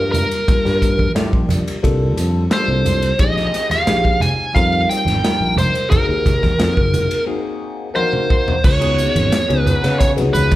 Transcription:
0.00 0.25 G2 medium
0.00 0.41 G3 medium
0.00 0.41 A#3 medium
0.00 0.41 D4 medium
0.00 0.41 F4 medium
0.00 0.11 A#4 medium
0.00 0.41 A#4 medium
0.12 1.11 A#4 medium
0.12 hi-hat pedal medium
0.12 ride medium
0.12 low conga medium
0.31 ride medium
0.47 1.08 G3 medium
0.47 1.08 A#3 medium
0.47 1.09 D4 medium
0.47 1.08 F4 medium
0.47 1.09 A#4 medium
0.47 muted fretless electric bass stroke soft
0.47 kick loud
0.47 ride medium
0.65 1.07 G2 medium
0.65 snare soft
0.82 kick medium
0.82 hi-hat pedal medium
0.82 ride medium
0.98 kick medium
0.98 high conga medium
1.15 1.30 A2 medium
1.15 1.76 G3 medium
1.15 1.76 A#3 medium
1.15 1.76 D4 medium
1.15 1.77 F4 medium
1.15 1.77 G4 medium
1.15 snare medium
1.15 ride medium
1.33 1.61 A#1 medium
1.33 kick medium
1.49 hi-hat pedal medium
1.49 ride medium
1.49 low conga medium
1.68 ride medium
1.83 2.17 C2 medium
1.83 2.44 G3 medium
1.83 2.44 A#3 medium
1.83 2.44 D4 medium
1.83 2.44 F4 medium
1.83 2.44 A4 medium
1.83 kick medium
1.83 ride medium
2.17 2.46 F2 medium
2.17 hi-hat pedal medium
2.17 ride medium
2.50 3.12 G3 medium
2.50 3.12 A#3 medium
2.50 3.12 D4 medium
2.50 3.12 F4 medium
2.50 3.12 A4 medium
2.50 3.22 C5 medium
2.50 snare loud
2.50 ride medium
2.68 3.11 C2 medium
2.85 hi-hat pedal medium
2.85 ride medium
2.85 low conga medium
3.02 ride medium
3.19 3.48 A#1 medium
3.19 3.80 C4 medium
3.19 3.80 D#4 medium
3.19 3.80 F4 medium
3.19 3.80 G4 medium
3.19 3.80 G#4 medium
3.19 3.68 D#5 medium
3.19 kick medium
3.19 ride medium
3.37 snare soft
3.54 snare soft
3.54 hi-hat pedal medium
3.54 ride soft
3.70 4.23 F5 medium
3.70 muted fretless electric bass stroke soft
3.70 snare soft
3.70 ride medium
3.70 high conga medium
3.86 4.16 A#1 medium
3.86 4.48 C4 medium
3.86 4.48 D#4 medium
3.86 4.48 F4 medium
3.86 4.48 G4 medium
3.86 4.48 G#4 medium
3.86 snare medium
3.86 ride medium
4.05 kick medium
4.20 4.53 G#5 medium
4.20 hi-hat pedal medium
4.20 ride soft
4.20 low conga medium
4.53 4.84 F2 medium
4.53 5.15 G3 medium
4.53 5.16 C4 medium
4.53 5.16 D#4 medium
4.53 5.16 F4 medium
4.53 5.16 A#4 medium
4.53 4.87 F5 medium
4.53 kick medium
4.53 ride medium
4.90 5.54 G5 medium
4.90 hi-hat pedal medium
4.90 ride medium
5.05 5.21 G#1 medium
5.05 snare soft
5.05 ride medium
5.05 high conga medium
5.23 5.84 G3 medium
5.23 5.84 C4 medium
5.23 5.84 D#4 medium
5.23 5.84 F4 medium
5.23 5.85 A#4 medium
5.23 muted fretless electric bass stroke soft
5.23 snare loud
5.23 ride medium
5.40 5.69 A#1 medium
5.56 5.90 C5 medium
5.56 hi-hat pedal medium
5.56 ride medium
5.56 low conga medium
5.75 ride medium
5.90 6.52 A#3 medium
5.90 6.53 C4 medium
5.90 6.53 D#4 medium
5.90 6.53 F#4 medium
5.90 6.53 G#4 medium
5.90 7.23 A#4 medium
5.90 kick loud
5.90 ride medium
5.90 low conga medium
6.09 6.51 D#2 medium
6.25 kick medium
6.25 snare soft
6.25 hi-hat pedal medium
6.25 ride medium
6.25 low conga medium
6.43 kick medium
6.43 snare soft
6.43 high conga medium
6.58 6.74 F2 medium
6.58 7.20 A#3 medium
6.58 7.20 C4 medium
6.58 7.20 D#4 medium
6.58 7.20 F#4 medium
6.58 7.20 G#4 medium
6.58 snare loud
6.58 ride medium
6.77 7.05 F#1 medium
6.77 kick medium
6.94 hi-hat pedal medium
6.94 ride medium
6.94 low conga medium
7.11 ride medium
7.26 7.88 A#3 medium
7.26 7.88 C4 medium
7.26 7.88 D#4 medium
7.26 7.88 F#4 medium
7.26 7.88 G#4 medium
7.94 8.56 A#3 medium
7.94 8.56 C4 medium
7.94 8.56 D#4 medium
7.94 8.56 F#4 medium
7.94 8.56 A#4 loud
7.94 8.66 C5 medium
7.94 high tom medium
8.13 mid tom medium
8.30 kick medium
8.48 floor tom medium
8.64 9.07 C#2 medium
8.64 9.59 C#5 medium
8.64 kick loud
8.64 crash medium
8.80 9.41 B3 medium
8.80 9.41 C#4 medium
8.80 9.41 D#4 medium
8.80 9.42 F#4 medium
8.80 9.42 G#4 medium
8.80 ride medium
8.98 hi-hat pedal medium
9.15 9.29 G#1 medium
9.15 ride medium
9.15 high conga medium
9.32 snare medium
9.32 hi-hat pedal medium
9.32 ride medium
9.48 9.78 C#2 medium
9.48 10.09 B3 medium
9.48 10.10 C#4 medium
9.48 10.10 D#4 medium
9.48 10.10 F#4 medium
9.48 10.10 G#4 medium
9.48 ride medium
9.59 9.98 B4 medium
9.66 hi-hat pedal medium
9.66 low conga medium
9.84 10.20 C#3 medium
9.84 snare soft
9.84 ride medium
10.00 10.09 C#5 medium
10.00 kick medium
10.00 hi-hat pedal medium
10.00 ride medium
10.16 10.32 C#2 medium
10.16 10.55 B3 medium
10.16 10.55 C#4 medium
10.16 10.55 D#4 medium
10.16 10.55 F#4 medium
10.16 10.55 G#4 medium
10.16 ride medium
10.33 10.55 C#2 medium
10.33 10.55 B4 medium
10.33 hi-hat pedal medium
10.33 high conga medium
10.51 kick medium
10.51 ride medium
10.51 high conga medium

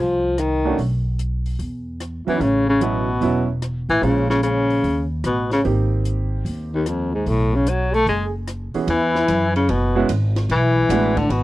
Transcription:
0.00 0.74 C2 medium
0.00 0.41 F3 medium
0.00 0.41 F4 medium
0.38 0.79 D#3 medium
0.38 0.79 D#4 medium
0.38 cross-stick medium
0.38 closed hi-hat soft
0.65 0.77 A3 medium
0.65 0.77 C#4 medium
0.65 0.78 D4 medium
0.65 0.78 F#4 medium
0.78 1.55 B1 medium
0.78 open hi-hat soft
1.19 closed hi-hat medium
1.46 open hi-hat soft
1.59 2.23 E2 medium
1.59 open hi-hat soft
2.00 cross-stick medium
2.00 closed hi-hat medium
2.27 2.43 E3 medium
2.27 2.39 F#3 medium
2.27 2.39 B3 soft
2.27 2.39 C#4 medium
2.27 2.43 E4 medium
2.27 2.39 E4 medium
2.27 muted upright bass stroke soft
2.27 open hi-hat soft
2.40 3.17 A1 medium
2.40 2.68 C#3 medium
2.40 2.67 C#4 medium
2.40 open hi-hat soft
2.67 2.84 C#3 medium
2.67 2.83 C#4 medium
2.81 3.49 B2 medium
2.81 3.05 F#3 medium
2.81 3.49 B3 medium
2.81 3.06 B3 medium
2.81 3.06 C#4 soft
2.81 3.06 E4 medium
2.81 closed hi-hat soft
3.21 3.85 E1 medium
3.21 3.46 F#3 medium
3.21 3.46 B3 medium
3.21 3.46 C#4 medium
3.21 3.46 E4 medium
3.21 open hi-hat soft
3.62 cross-stick medium
3.62 closed hi-hat soft
3.89 4.01 A1 medium
3.89 4.05 E3 medium
3.89 4.05 E4 medium
3.89 open hi-hat soft
4.02 4.79 A#1 medium
4.02 4.29 C#3 medium
4.02 4.83 G#3 soft
4.02 4.83 C#4 soft
4.02 4.30 C#4 medium
4.02 4.84 F4 medium
4.02 4.83 C5 soft
4.02 open hi-hat soft
4.30 4.42 C#3 medium
4.30 4.43 C#4 medium
4.30 snare soft
4.43 5.07 C#3 medium
4.43 5.07 C#4 medium
4.43 closed hi-hat medium
4.70 open hi-hat soft
4.84 5.21 D#2 medium
4.84 open hi-hat soft
5.24 5.61 A1 medium
5.24 5.50 B2 medium
5.24 5.50 B3 medium
5.24 cross-stick medium
5.24 closed hi-hat soft
5.51 5.60 C#3 medium
5.51 5.64 C#4 medium
5.51 snare soft
5.51 open hi-hat soft
5.64 6.42 G#1 medium
5.64 6.78 A#3 medium
5.64 6.78 C4 soft
5.64 6.78 D#4 soft
5.64 6.78 G4 medium
5.64 open hi-hat soft
6.05 closed hi-hat soft
6.45 7.22 D#2 medium
6.45 open hi-hat soft
6.73 6.90 D#2 medium
6.73 6.89 D#3 medium
6.86 7.14 F2 medium
6.86 7.12 F3 medium
6.86 cross-stick medium
6.86 closed hi-hat soft
7.13 7.31 G#2 medium
7.13 7.28 G#3 medium
7.26 8.03 B1 medium
7.26 7.57 A2 medium
7.26 7.55 A3 medium
7.26 open hi-hat soft
7.53 7.70 C#3 medium
7.53 7.70 C#4 medium
7.67 7.96 F#3 medium
7.67 7.95 F#4 medium
7.67 closed hi-hat soft
7.94 8.08 A3 loud
7.94 8.07 A4 medium
7.94 open hi-hat soft
8.06 8.70 F#1 medium
8.06 8.25 G#3 medium
8.06 8.33 G#4 medium
8.06 open hi-hat soft
8.48 cross-stick medium
8.48 closed hi-hat medium
8.74 8.87 E3 medium
8.74 8.87 B3 soft
8.74 8.87 C#4 soft
8.74 8.87 F#4 medium
8.74 8.87 G#4 medium
8.74 muted upright bass stroke soft
8.74 open hi-hat soft
8.87 9.27 E2 medium
8.87 9.53 E3 medium
8.87 9.52 E4 medium
8.87 ride medium
9.15 snare soft
9.28 9.68 F#2 medium
9.28 hi-hat pedal medium
9.28 ride medium
9.56 9.71 C#3 medium
9.56 9.72 C#4 medium
9.56 ride soft
9.69 10.08 F#1 medium
9.69 10.10 B2 medium
9.69 10.10 B3 medium
9.69 ride medium
9.95 10.08 G#3 medium
9.95 10.08 B3 medium
9.95 10.08 C#4 medium
9.95 10.08 E4 medium
9.95 10.08 F#4 medium
10.09 10.48 G#1 medium
10.09 hi-hat pedal medium
10.09 ride medium
10.36 snare soft
10.36 ride soft
10.49 10.89 B1 medium
10.49 11.19 E3 medium
10.49 11.19 E4 medium
10.49 ride medium
10.89 11.29 A1 medium
10.89 11.15 G#3 medium
10.89 11.14 B3 medium
10.89 11.15 D4 medium
10.89 11.15 E4 medium
10.89 11.15 F#4 medium
10.89 hi-hat pedal medium
10.89 ride medium
11.17 11.33 D3 medium
11.17 11.33 D4 medium
11.17 kick medium
11.17 ride soft
11.29 11.43 G#1 medium
11.29 11.43 B2 medium
11.29 11.43 B3 medium
11.29 ride medium

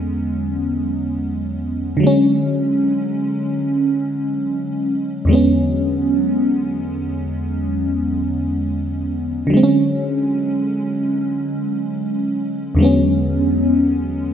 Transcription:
0.00 1.48 E2 medium
0.00 1.49 D3 medium
0.00 1.50 F#3 medium
0.00 1.51 G#3 medium
0.00 1.52 B3 medium
0.00 1.53 C#4 medium
1.97 5.23 D3 medium
1.97 5.24 F#3 medium
2.03 5.26 G#3 medium
2.03 5.28 C#4 medium
5.25 8.98 E2 medium
5.25 8.99 D3 medium
5.25 9.00 F#3 medium
5.31 9.01 G#3 medium
5.31 9.02 B3 medium
5.31 9.03 C#4 medium
9.47 12.73 D3 medium
9.47 12.74 F#3 medium
9.54 12.76 G#3 medium
9.54 9.61 C4 medium
9.63 12.81 C#4 medium
12.75 14.34 E2 medium
12.75 14.34 D3 medium
12.75 14.34 F#3 medium
12.80 14.34 G#3 medium
12.80 14.34 B3 medium
12.84 14.34 C#4 medium

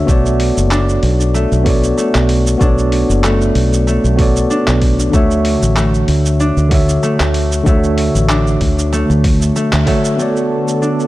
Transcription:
0.00 0.10 D3 medium
0.00 0.10 D4 medium
0.00 0.10 C#5 medium
0.06 0.50 B1 loud
0.06 1.34 A3 medium
0.06 1.61 B3 medium
0.06 1.62 F#4 medium
0.06 1.63 A4 medium
0.06 kick loud
0.06 cabasa medium
0.10 1.64 C#5 medium
0.10 1.64 D5 medium
0.26 cabasa soft
0.40 open hi-hat medium
0.57 0.97 F#1 medium
0.57 cabasa medium
0.71 2.60 D4 medium
0.71 clap medium
0.71 cabasa soft
0.89 cabasa soft
1.03 1.45 B1 medium
1.03 open hi-hat medium
1.20 cabasa medium
1.34 1.97 A3 medium
1.34 cabasa medium
1.52 1.92 B1 loud
1.52 cabasa soft
1.63 2.56 B3 medium
1.63 2.57 F#4 medium
1.63 2.57 A4 medium
1.63 kick loud
1.63 open hi-hat medium
1.68 2.58 C#5 medium
1.68 2.59 D5 medium
1.84 cabasa medium
1.98 3.23 A3 medium
1.98 cabasa medium
2.15 2.55 B1 medium
2.15 clap medium
2.15 cabasa soft
2.29 open hi-hat medium
2.47 cabasa medium
2.58 3.03 B1 loud
2.58 4.14 B3 medium
2.58 4.50 D4 medium
2.58 4.15 F#4 medium
2.58 4.15 A4 medium
2.58 kick loud
2.58 cabasa medium
2.62 4.16 C#5 medium
2.62 4.17 D5 medium
2.78 cabasa soft
2.92 open hi-hat medium
3.09 3.50 F#1 medium
3.09 cabasa medium
3.24 3.87 A3 loud
3.24 clap medium
3.24 cabasa soft
3.42 cabasa soft
3.55 3.97 B1 medium
3.55 open hi-hat medium
3.73 cabasa medium
3.87 5.13 A3 medium
3.87 cabasa medium
4.04 4.44 B1 loud
4.04 cabasa soft
4.16 5.09 B3 medium
4.16 5.09 F#4 medium
4.16 5.10 A4 medium
4.16 kick loud
4.16 open hi-hat medium
4.20 5.11 C#5 medium
4.20 5.11 D5 medium
4.36 cabasa medium
4.50 6.40 D4 medium
4.50 cabasa medium
4.68 5.08 B1 medium
4.68 clap medium
4.68 cabasa soft
4.82 kick medium
4.82 open hi-hat medium
5.00 cabasa medium
5.11 5.55 D2 medium
5.11 6.67 D3 medium
5.11 5.76 A3 medium
5.11 6.67 D4 medium
5.11 6.68 F#4 medium
5.11 kick loud
5.11 cabasa medium
5.15 6.69 C#5 medium
5.15 6.69 E5 medium
5.31 cabasa soft
5.45 open hi-hat medium
5.62 6.03 A1 medium
5.62 cabasa medium
5.76 7.02 A3 medium
5.76 clap medium
5.76 cabasa soft
5.94 cabasa soft
6.08 6.50 D2 medium
6.08 open hi-hat medium
6.26 cabasa medium
6.40 8.29 D4 medium
6.40 cabasa medium
6.57 6.97 D2 loud
6.57 cabasa soft
6.69 7.61 D3 medium
6.69 7.62 D4 medium
6.69 7.63 F#4 medium
6.69 kick medium
6.69 open hi-hat medium
6.73 7.63 C#5 medium
6.73 7.64 E5 medium
6.89 cabasa medium
7.03 7.66 A3 loud
7.03 cabasa medium
7.20 7.60 D2 medium
7.20 clap medium
7.20 cabasa soft
7.34 open hi-hat medium
7.52 cabasa medium
7.63 8.08 D2 loud
7.63 9.19 D3 medium
7.63 8.92 A3 medium
7.63 9.20 D4 medium
7.63 9.21 F#4 medium
7.63 kick loud
7.63 cabasa medium
7.68 9.21 C#5 medium
7.68 9.22 E5 medium
7.84 cabasa soft
7.98 open hi-hat medium
8.15 8.55 A1 medium
8.15 cabasa medium
8.29 10.81 D4 medium
8.29 clap medium
8.29 cabasa soft
8.47 cabasa soft
8.61 9.03 D2 loud
8.61 kick medium
8.61 open hi-hat medium
8.79 cabasa medium
8.93 9.55 A3 loud
8.93 cabasa medium
9.10 9.50 D2 loud
9.10 cabasa soft
9.24 kick loud
9.24 open hi-hat loud
9.42 cabasa medium
9.56 9.87 A3 medium
9.56 cabasa medium
9.73 9.84 D2 medium
9.73 clap medium
9.73 cabasa soft
9.86 10.15 D3 medium
9.86 10.18 A3 loud
9.86 10.15 D4 medium
9.86 10.15 F#4 medium
9.86 10.16 C#5 medium
9.86 10.16 E5 medium
9.86 kick medium
9.86 open hi-hat medium
10.05 cabasa medium
10.16 11.07 D3 medium
10.16 11.07 A3 medium
10.16 11.07 B3 medium
10.16 11.07 F#4 medium
10.16 11.07 A4 medium
10.16 cabasa soft
10.21 11.07 C#5 medium
10.21 11.07 D5 medium
10.37 cabasa soft
10.68 cabasa medium
10.82 11.07 D4 medium
10.82 cabasa soft
11.00 cabasa soft

